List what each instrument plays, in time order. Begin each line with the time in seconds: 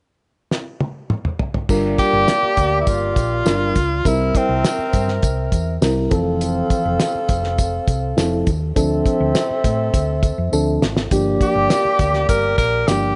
0.51 snare
0.80 high tom
1.10 mid tom
1.25 mid tom
1.39 floor tom
1.54 floor tom
1.69 fingered electric bass G1, reed electric piano G3 D4 F4 A#4, horn section A#3 G4 D5, kick, crash, tambourine
1.98 tenor saxophone G4, kick, closed hi-hat, tambourine
2.13 fingered electric bass G1
2.28 snare, closed hi-hat, tambourine
2.43 muted fingered electric bass stroke
2.57 fingered electric bass D2, kick, closed hi-hat, tambourine
2.81 tenor saxophone E4
2.87 fingered electric bass G1, tenor saxophone F4, kick, closed hi-hat, tambourine
3.16 fingered electric bass A#1, kick, closed hi-hat, tambourine
3.45 fingered electric bass G1, reed electric piano G3 D4 F4 A#4, snare, closed hi-hat, tambourine
3.76 fingered electric bass C#2, kick, closed hi-hat, tambourine
4.05 fingered electric bass C2, reed electric piano G3 C4 E4 A#4, horn section C4 A#4 E5, tenor saxophone E4, kick, closed hi-hat, tambourine
4.35 tenor saxophone C4, kick, closed hi-hat, tambourine
4.49 fingered electric bass C2
4.65 snare, closed hi-hat, tambourine
4.78 muted fingered electric bass stroke
4.93 fingered electric bass G2, kick, closed hi-hat, tambourine
5.08 snare
5.22 fingered electric bass C2, kick, closed hi-hat, tambourine
5.52 fingered electric bass E2, kick, closed hi-hat, tambourine
5.82 fingered electric bass C2, reed electric piano G3 C4 E4 A#4, snare, closed hi-hat, tambourine
6.11 fingered electric bass F1, reed electric piano E3 F3 C4 A4, horn section C4 A4 F5, kick, closed hi-hat, tambourine
6.41 closed hi-hat, tambourine
6.70 kick, closed hi-hat, tambourine
6.85 fingered electric bass F1
7.00 snare, closed hi-hat, tambourine
7.15 muted fingered electric bass stroke
7.29 fingered electric bass F1, kick, closed hi-hat, tambourine
7.44 snare
7.58 kick, closed hi-hat, tambourine
7.88 fingered electric bass C2, kick, closed hi-hat, tambourine
8.17 fingered electric bass F1, reed electric piano F3 C4 E4 A4, snare, closed hi-hat, tambourine
8.47 fingered electric bass D#2, kick, closed hi-hat, tambourine
8.76 fingered electric bass D2, reed electric piano F3 C4 D4 A4, horn section C4 A4 E5, kick, closed hi-hat, tambourine
9.06 kick, closed hi-hat, tambourine
9.20 fingered electric bass D2
9.35 snare, closed hi-hat, tambourine
9.50 muted fingered electric bass stroke
9.64 fingered electric bass A2, kick, closed hi-hat, tambourine
9.94 fingered electric bass D2, kick, closed hi-hat, tambourine
10.23 kick, closed hi-hat, tambourine
10.38 fingered electric bass F2
10.52 fingered electric bass D2, reed electric piano F3 C4 D4 A4, tambourine
10.82 fingered electric bass G#1, snare, tambourine
10.97 snare
11.11 fingered electric bass G1, reed electric piano F3 A#3 D4 G4, horn section A#3 G4 D5, kick, closed hi-hat, tambourine
11.41 tenor saxophone G4, kick, closed hi-hat, tambourine
11.55 fingered electric bass G1
11.70 snare, closed hi-hat, tambourine
11.85 muted fingered electric bass stroke
11.99 fingered electric bass D2, kick, closed hi-hat, tambourine
12.14 snare
12.29 fingered electric bass G1, tenor saxophone A#4, kick, closed hi-hat, tambourine
12.58 fingered electric bass A#1, tenor saxophone A#4, kick, closed hi-hat, tambourine
12.88 fingered electric bass G1, reed electric piano F3 A#3 D4 G4, tenor saxophone G4, snare, closed hi-hat, tambourine